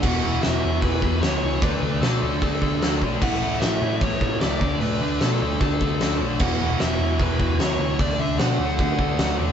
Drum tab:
CC |x-------|--------|x-------|--------|
HH |--o-o-o-|o-o-o-o-|o-o-o-o-|o-o-o-o-|
SD |--o---o-|--o---o-|--o---o-|--o---o-|
BD |o---oo--|o---oo-o|o---oo-o|----oo--|

CC |x-------|--------|
HH |--o-o-o-|o-o-o-o-|
SD |--o---o-|--o---o-|
BD |o---oo--|o---oo--|